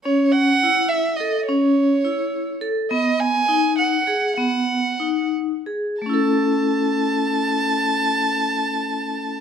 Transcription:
<<
  \new Staff \with { instrumentName = "Violin" } { \time 5/8 \key a \lydian \tempo 4 = 99 cis''8 fis''4 e''8 dis''8 | cis''2 r8 | dis''8 gis''4 fis''4 | fis''4. r4 |
a''2~ a''8~ | a''2~ a''8 | }
  \new Staff \with { instrumentName = "Vibraphone" } { \time 5/8 \key a \lydian cis'4 e'4 a'8 | cis'4 e'4 a'8 | b4 dis'4 gis'8 | b4 dis'4 gis'8 |
<a cis' e' a'>2~ <a cis' e' a'>8~ | <a cis' e' a'>2~ <a cis' e' a'>8 | }
>>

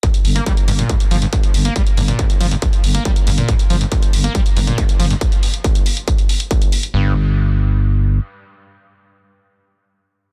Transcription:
<<
  \new Staff \with { instrumentName = "Acid bass" } { \clef bass \time 4/4 \key g \minor \tempo 4 = 139 g,16 r8 bes16 g16 r16 g,16 bes,16 g,16 r16 f16 g,16 g,16 r8 bes16 | g16 r16 g,16 bes,16 g,16 r16 f16 g,16 g,16 r8 bes16 g16 r16 g,16 bes,16 | g,16 r16 f16 g,16 g,16 r8 bes16 g16 r16 g,16 bes,16 g,16 r16 f16 g,16 | r1 |
g,8 r2. r8 | r1 | }
  \new Staff \with { instrumentName = "FM bass" } { \clef bass \time 4/4 \key g \minor r8 g,,8 r8 g,,8 r8 g,,8 r8 g,,8 | r8 g,,8 r8 g,,8 r8 g,,8 r8 g,,8 | r8 g,,8 r8 g,,8 r8 g,,8 r8 g,,8 | r1 |
g,,2. r4 | r1 | }
  \new DrumStaff \with { instrumentName = "Drums" } \drummode { \time 4/4 <hh bd>16 hh16 hho16 hh16 <hh bd>16 hh16 hho16 hh16 <hh bd>16 hh16 hho16 hh16 <hh bd>16 hh16 hho16 hh16 | <hh bd>16 hh16 hho16 hh16 <hh bd>16 hh16 hho16 hh16 <hh bd>16 hh16 hho16 hh16 <hh bd>16 hh16 hho16 hh16 | <hh bd>16 hh16 hho16 hh16 <hh bd>16 hh16 hho16 hh16 <hh bd>16 hh16 hho16 hh16 <hh bd>16 hh16 hho16 hh16 | <hh bd>16 hh16 hho16 hh16 <hh bd>16 hh16 hho16 hh16 <hh bd>16 hh16 hho16 hh16 <hh bd>16 hh16 hho16 hh16 |
r4 r4 r4 r4 | r4 r4 r4 r4 | }
>>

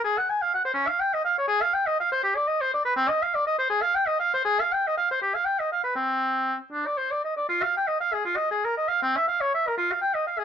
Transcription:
\new Staff \with { instrumentName = "Oboe" } { \time 6/8 \key des \lydian \tempo 4. = 81 aes'16 ges''16 aes''16 f''16 ges''16 c''16 des'16 f''16 g''16 ees''16 f''16 des''16 | \key g \phrygian aes'16 f''16 g''16 ees''16 f''16 c''16 g'16 d''16 ees''16 c''16 d''16 b'16 | c'16 ees''16 f''16 d''16 ees''16 c''16 aes'16 f''16 g''16 ees''16 f''16 c''16 | aes'16 f''16 g''16 ees''16 f''16 c''16 g'16 f''16 g''16 ees''16 f''16 b'16 |
c'4. d'16 d''16 c''16 d''16 ees''16 d''16 | \key f \minor f'16 f''16 g''16 ees''16 f''16 aes'16 f'16 ees''16 aes'16 bes'16 ees''16 f''16 | c'16 e''16 f''16 des''16 e''16 bes'16 f'16 f''16 g''16 ees''16 f''16 aes'16 | }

